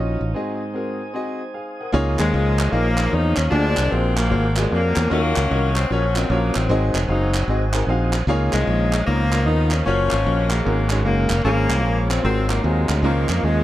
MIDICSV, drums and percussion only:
0, 0, Header, 1, 2, 480
1, 0, Start_track
1, 0, Key_signature, -5, "major"
1, 0, Tempo, 396563
1, 420, Time_signature, 4, 2, 24, 8
1, 16506, End_track
2, 0, Start_track
2, 0, Title_t, "Drums"
2, 2653, Note_on_c, 9, 39, 94
2, 2774, Note_off_c, 9, 39, 0
2, 3138, Note_on_c, 9, 39, 115
2, 3259, Note_off_c, 9, 39, 0
2, 3602, Note_on_c, 9, 39, 108
2, 3723, Note_off_c, 9, 39, 0
2, 4074, Note_on_c, 9, 39, 123
2, 4195, Note_off_c, 9, 39, 0
2, 4565, Note_on_c, 9, 39, 120
2, 4686, Note_off_c, 9, 39, 0
2, 5053, Note_on_c, 9, 39, 113
2, 5174, Note_off_c, 9, 39, 0
2, 5525, Note_on_c, 9, 39, 107
2, 5647, Note_off_c, 9, 39, 0
2, 6005, Note_on_c, 9, 39, 127
2, 6126, Note_off_c, 9, 39, 0
2, 6491, Note_on_c, 9, 39, 116
2, 6612, Note_off_c, 9, 39, 0
2, 6972, Note_on_c, 9, 39, 115
2, 7093, Note_off_c, 9, 39, 0
2, 7457, Note_on_c, 9, 39, 106
2, 7578, Note_off_c, 9, 39, 0
2, 7927, Note_on_c, 9, 39, 121
2, 8048, Note_off_c, 9, 39, 0
2, 8412, Note_on_c, 9, 39, 117
2, 8533, Note_off_c, 9, 39, 0
2, 8889, Note_on_c, 9, 39, 108
2, 9010, Note_off_c, 9, 39, 0
2, 9364, Note_on_c, 9, 39, 106
2, 9485, Note_off_c, 9, 39, 0
2, 9840, Note_on_c, 9, 39, 107
2, 9961, Note_off_c, 9, 39, 0
2, 10325, Note_on_c, 9, 39, 106
2, 10446, Note_off_c, 9, 39, 0
2, 10809, Note_on_c, 9, 39, 115
2, 10930, Note_off_c, 9, 39, 0
2, 11286, Note_on_c, 9, 39, 102
2, 11408, Note_off_c, 9, 39, 0
2, 11752, Note_on_c, 9, 39, 127
2, 11873, Note_off_c, 9, 39, 0
2, 12235, Note_on_c, 9, 39, 111
2, 12356, Note_off_c, 9, 39, 0
2, 12716, Note_on_c, 9, 39, 127
2, 12837, Note_off_c, 9, 39, 0
2, 13192, Note_on_c, 9, 39, 108
2, 13313, Note_off_c, 9, 39, 0
2, 13676, Note_on_c, 9, 39, 126
2, 13797, Note_off_c, 9, 39, 0
2, 14167, Note_on_c, 9, 39, 107
2, 14288, Note_off_c, 9, 39, 0
2, 14655, Note_on_c, 9, 39, 124
2, 14776, Note_off_c, 9, 39, 0
2, 15128, Note_on_c, 9, 39, 104
2, 15249, Note_off_c, 9, 39, 0
2, 15603, Note_on_c, 9, 39, 112
2, 15724, Note_off_c, 9, 39, 0
2, 16087, Note_on_c, 9, 39, 105
2, 16208, Note_off_c, 9, 39, 0
2, 16506, End_track
0, 0, End_of_file